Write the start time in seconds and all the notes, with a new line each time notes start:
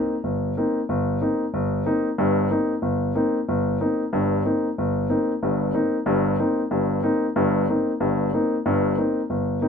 Already playing: A#3 C4 D#4
0.24 G1
0.57 A#3 C4 D#4
0.89 G1
1.21 A#3 C4 D#4
1.54 G1
1.86 A#3 C4 D#4
2.18 G1 G2
2.50 A#3 C4 D#4
2.82 G1
3.15 A#3 C4 D#4
3.48 G1
3.80 A#3 C4 D#4
4.13 G1 G2
4.45 A#3 C4 D#4
4.78 G1
5.10 A#3 C4 D#4
5.43 G1 G2
5.74 A#3 C4 D#4
6.06 G1 G2
6.39 A#3 C4 D#4
6.71 G1 G2
7.03 A#3 C4 D#4
7.36 G1 G2
7.69 A#3 C4 D#4
8.00 G1 G2
8.33 A#3 C4 D#4
8.66 G1 G2
8.97 A#3 C4 D#4
9.30 G1
9.61 A#3 C4 D#4